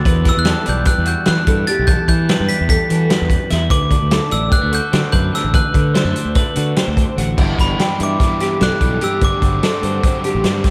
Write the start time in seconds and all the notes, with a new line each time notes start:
Already playing: D3
0.05 E2 B4, kick, closed hi-hat
0.24 E3, kick, snare, closed hi-hat
0.29 E6
0.37 E2 F#6
0.45 G3 A4, snare, closed hi-hat
0.65 B1 E3 D5, closed hi-hat
0.69 G6
0.85 G3 B4 F#6, kick, closed hi-hat
0.98 E2
1.05 F#4 G6, closed hi-hat
1.25 E3 B3 F#6, snare, closed hi-hat
1.38 D4
1.47 G2 E3 A4, kick, closed hi-hat
1.67 E2 G4 A6, closed hi-hat
1.79 B1
1.87 E2 A4 G6, kick, closed hi-hat
2.08 E3 G6, kick, closed hi-hat
2.29 G3 B4, snare, closed hi-hat
2.40 G2
2.49 E3 B6, closed hi-hat
2.61 E2
2.69 G3 A4 B6, kick, closed hi-hat
2.90 E3 F#4, closed hi-hat
3.10 G2 B4, snare, closed hi-hat
3.22 E2
3.29 F#2, kick, closed hi-hat
3.50 E2 E4, snare, closed hi-hat
3.70 D2 B4 D6, kick, closed hi-hat
3.91 D3, kick, closed hi-hat
4.03 D2
4.11 A3 A4, snare, closed hi-hat
4.29 A1 D3 D5 E6, closed hi-hat
4.50 G3 B4 F#6, kick, closed hi-hat
4.61 D2 A3
4.72 F#4 A4 G6, closed hi-hat
4.92 D3 C4, snare, closed hi-hat
5.12 F#2 D3 B4 G6, kick, closed hi-hat
5.32 D2 A4 E6, snare, closed hi-hat
5.44 A1
5.53 D2 B4 F#6, kick, closed hi-hat
5.74 D3, kick, closed hi-hat
5.95 G3 C5, snare, closed hi-hat
6.04 F#2 A3
6.15 D3, closed hi-hat
6.25 D2
6.35 A3 B4, kick, closed hi-hat
6.56 D3 F#4, closed hi-hat
6.76 C4 C5, snare, closed hi-hat
6.88 D2
6.96 D3, kick, closed hi-hat
7.17 A1 D2 F#4, closed hi-hat
7.37 G1 G2 E3 G3 B3 D4 E4 G4 F#5, kick, crash
7.57 G1 G3 B3 E4 G4 B5, kick, snare, closed hi-hat
7.78 G3 B3 E4 G4 G5, snare, closed hi-hat
7.89 D4
8.00 G2 E3 E5 D6, closed hi-hat
8.19 G3 B3 E4 G4, kick, snare, closed hi-hat
8.39 B3 E4 G4, snare, closed hi-hat
8.60 B1 G2 G3 B3 E4 G4 A4 F#6, snare, closed hi-hat
8.79 B1 G3 B3 E4 G4, kick, closed hi-hat
9.00 G2 G3 B3 E4 G4 E6, closed hi-hat
9.21 G1 G2 D3 F#3 A3 D4 F#4 D6, kick, closed hi-hat
9.26 C5
9.42 G1 G3 A3 D4 F#4 C5, kick, closed hi-hat
9.62 A3 C4 D4 F#4 A4 C5, snare, closed hi-hat
9.82 G2 D3 C5, closed hi-hat
10.02 D3 F#3 A3 D4 F#4 C5, kick, closed hi-hat
10.23 A3 D4 F#4 G4 C5, closed hi-hat
10.35 A1
10.43 G2 A3 D4 F#4 C5, snare, closed hi-hat
10.64 G3 D4 F#4 C5, kick, snare, closed hi-hat